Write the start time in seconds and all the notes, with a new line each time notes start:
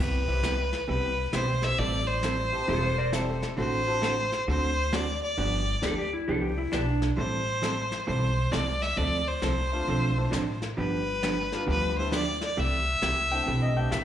Already playing: C3
0.00 C2 G3 B3 E4 G4 B4
0.27 C4 E4 G4 B4, kick
0.43 C3 G3 B3 E4 G4, snare, hi-hat pedal
0.73 snare
0.88 C2 C3 G3 B3 E4 G4 B4, brush sweep
1.33 B1 C3 G3 B3 E4 G4 C5, snare, hi-hat pedal
1.62 C4 E4 G4 C5 E5, snare
1.78 A1 E3 G3 C4 E4 A4 D5, brush sweep
2.07 C5
2.23 E3 G3 C4 E4 A4, snare, hi-hat pedal
2.52 C4 E4 G4 A4
2.68 E1 E3 G3 C4 E4 F4 A4, brush sweep
2.83 A4 C5
2.98 A#4 D5
3.12 E3 G3 C4 E4 G4 A4, snare, hi-hat pedal
3.42 snare
3.57 A1 D3 A3 C4 F#4 A4 C5, brush sweep
3.87 C4 D4 F#4 A4
4.02 D3 A3 C4 F#4 A4, snare, hi-hat pedal
4.32 snare
4.47 D2 D3 A3 C4 F#4 A4 C5, brush sweep
4.92 D3 A3 C4 F#4 A4 D5, snare, hi-hat pedal
5.24 D5
5.37 G1 D3 F3 B3 D4 G4, brush sweep
5.82 D2 D3 F3 B3 D4 G4 A4, snare, hi-hat pedal
5.98 G4
6.13 E4
6.27 C2 D3 F3 B3 D4 G4 A4, brush sweep
6.42 G4
6.58 E4
6.72 B1 D3 F3 B3 D4 G4, snare, hi-hat pedal
7.02 snare
7.17 A1 E3 G3 C4 E4 A4 C5, brush sweep
7.62 E3 G3 C4 E4 A4, snare, hi-hat pedal
7.92 snare
8.07 B1 E3 G3 C4 E4 A4 C5, brush sweep
8.52 C2 E3 G3 C4 E4 A4 D5, snare, hi-hat pedal
8.82 E5, snare
8.97 D2 D3 F3 C4 D4 A4 D5, brush sweep
9.28 C5
9.42 C2 D3 F3 C4 D4 A4, snare, hi-hat pedal
9.72 A3 C4 D4 F4
9.87 B1 D3 F3 C4 D4 A4, brush sweep
10.17 A3 C4 D4 E4
10.31 A1 D3 F3 C4 D4 A4, snare, hi-hat pedal
10.62 snare
10.77 G1 D3 F3 B3 D4 G4 B4, brush sweep
11.23 D3 F3 B3 D4 G4, snare, hi-hat pedal
11.52 G3 B3 D4 F4, snare
11.66 D2 D3 F3 B3 D4 G4 B4, brush sweep
11.98 G3 B3 D4 E4 C5
12.11 D3 F3 B3 D4 G4 D5, snare, hi-hat pedal
12.41 D5, snare
12.57 C2 C3 E3 A3 E4 G4 E5, brush sweep
13.02 C2 C3 E3 A3 E4 G4, snare, hi-hat pedal
13.31 A3 C4 D4 E4 G5
13.46 B1 C3 E3 A3 E4 G4, brush sweep
13.62 D#5
13.76 A3 C4 D4 G4 G5
13.91 A1 C3 E3 A3 E4 G4 E5, snare, hi-hat pedal